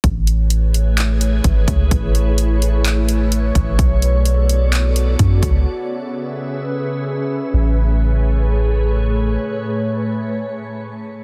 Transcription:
<<
  \new Staff \with { instrumentName = "Ambient pad" } { \time 4/4 \key a \major \tempo 4 = 128 <a e' gis' b' cis''>1~ | <a e' gis' b' cis''>1 | <b fis' a' d''>1 | <cis cis' gis' b' e''>1 |
<a, a gis' b' cis''>1~ | <a, a gis' b' cis''>1 | }
  \new Staff \with { instrumentName = "808-style bass" } { \clef bass \time 4/4 \key a \major a,,2. gis,,8 cis,8 | a,,2.~ a,,8 a,,8 | b,,2. fis,8 cis,8 | r1 |
a,,1 | r1 | }
  \new DrumStaff \with { instrumentName = "Drums" } \drummode { \time 4/4 <hh bd>8 hh8 hh8 hh8 <hc hh>8 hh8 <hh bd>8 <hh bd>8 | <hh bd>8 hh8 hh8 hh8 <hc hh>8 hh8 hh8 <hh bd>8 | <hh bd>8 hh8 hh8 hh8 <hc hh>8 hh8 <hh bd>8 <hh bd>8 | r4 r4 r4 r4 |
r4 r4 r4 r4 | r4 r4 r4 r4 | }
>>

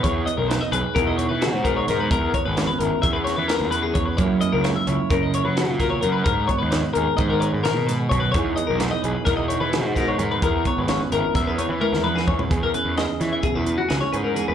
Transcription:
<<
  \new Staff \with { instrumentName = "Clean electric guitar" } { \time 9/8 \key e \lydian \tempo 4. = 87 cis''8 dis''16 ais'16 b'16 dis''16 b'8 ais'16 dis''16 cis''16 b'16 fis'8 ais'16 cis''16 ais'16 b'16 | ais'8 cis''16 b'16 cis''16 b'16 ais'8 e''16 b'16 cis''16 b'16 ais'8 b'16 gis'16 cis''16 b'16 | cis''8 dis''16 ais'16 cis''16 e''16 cis''8 ais'16 dis''16 cis''16 b'16 fis'8 ais'16 cis''16 ais'16 b'16 | ais'8 cis''16 b'16 cis''16 b'16 ais'8 dis''16 ais'16 cis''16 b'16 ais'8 b'16 gis'16 cis''16 b'16 |
cis''8 dis''16 ais'16 b'16 dis''16 b'8 ais'16 dis''16 cis''16 b'16 fis'8 ais'16 cis''16 ais'16 b'16 | ais'8 cis''16 b'16 cis''16 b'16 ais'8 e''16 b'16 cis''16 b'16 ais'8 b'16 gis'16 cis''16 b'16 | gis'16 ais'16 b'8 dis''8 cis''16 e''16 gis'16 b'8 fis'16 gis'16 cis''16 b'16 ais'16 gis'16 b'16 | }
  \new Staff \with { instrumentName = "Clean electric guitar" } { \time 9/8 \key e \lydian << { r8 b8 dis'8 gis'4 dis'8 gis'8 b4 | r8 b8 cis'8 e'4 cis'2 | <fis ais cis' e'>8 ais8 cis'8 e'4 cis'2 | r8 b8 dis'8 gis'4 dis'2 |
<e b dis' gis'>8 b8 dis'8 gis'4 dis'8 gis'8 b4 | r8 b8 cis'8 e'4 b16 cis'16 e'8 b4 | gis'8 cis'8 gis'2 cis'8 gis'8 gis'8 | } \\ { e,2 b,2 e,8 | e,2 e,2 e,8 | fis,2 cis4. e,8 fis,8 | gis,2 dis4 ais,8 gis,8 fis,8 |
e,2 b,2 e,8 | e,2 e,2 e,8 | e,4. e8 b,8 e4. e,8 | } >> }
  \new Staff \with { instrumentName = "Picked electric bass" } { \clef bass \time 9/8 \key e \lydian e,8 r16 b,,8 r16 b,,16 r16 e,8. e8 gis,8. gis,8 | e,8 r16 gis,,8 r16 gis,,16 r16 e,8. e8 e,8. e,8 | fis,8 r16 cis,8 r16 cis,16 r16 fis,8. fis8 ais,8. fis,8 | gis,8 r16 dis,8 r16 dis,16 r16 gis,8. gis,8 b,8. b,8 |
e,8 r16 b,,8 r16 b,,16 r16 e,8. e8 gis,8. gis,8 | e,8 r16 gis,,8 r16 gis,,16 r16 e,8. e8 e,8. e,8 | e,8 r16 e,8 r16 e8 r16 e,8 r16 cis,16 r16 gis,8. e,16 | }
  \new DrumStaff \with { instrumentName = "Drums" } \drummode { \time 9/8 <hh bd>8 hh8 <hh sn>8 hh8 <hh bd>8 hh8 <hh sn>8 <hh bd>8 <hh sn>8 | <hh bd>8 <hh bd>8 <hh sn>8 hh8 <hh bd>8 <hh sn>8 <hh sn>8 hh8 <hh bd>8 | <hh bd>8 hh8 <hh sn>8 hh8 <hh bd>8 hh8 <hh sn>8 <hh bd sn>8 hh8 | <hh bd>8 <hh bd>8 <hh sn>8 hh8 <hh bd>8 hh8 <hh sn>8 <hh sn>8 <hh bd>8 |
<hh bd>8 hh8 <hh sn>8 hh8 <hh bd sn>8 hh8 <hh sn>8 <hh bd sn>8 hh8 | <hh bd>8 <hh bd>8 <hh sn>8 hh8 <hh bd sn>8 hh8 tommh16 sn16 toml16 sn16 bd16 tomfh16 | <hh bd>8 hh8 <hh sn>8 <hh sn>8 <hh bd>8 hh8 <hh sn>8 hh8 hh8 | }
>>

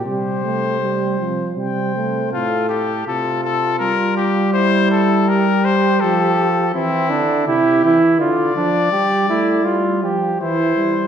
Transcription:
<<
  \new Staff \with { instrumentName = "Trumpet" } { \time 3/4 \key f \major \tempo 4 = 81 c''2 g''4 | f'8 g'8 a'8 a'8 bes'8 g'8 | c''8 a'8 bes'8 c''8 a'4 | e'4 g'4 d''4~ |
d''4. r8 c''4 | }
  \new Staff \with { instrumentName = "Flugelhorn" } { \time 3/4 \key f \major g'4. r8 c''4 | a'4 f'2 | e'4 g'2 | c'8 d'8 e'8 e'8 f'8 d'8 |
g'8 e'8 f'8 g'8 e'4 | }
  \new Staff \with { instrumentName = "Trombone" } { \clef bass \time 3/4 \key f \major g8 a8 g8 f8 g8 a8 | a,4 c4 g4~ | g2 f4 | e8 d8 c8 e8 d8 f8 |
g8 a8 g8 f8 e8 g8 | }
  \new Staff \with { instrumentName = "Tuba" } { \clef bass \time 3/4 \key f \major c4. r8 c4 | r2. | r2. | r2. |
r2. | }
>>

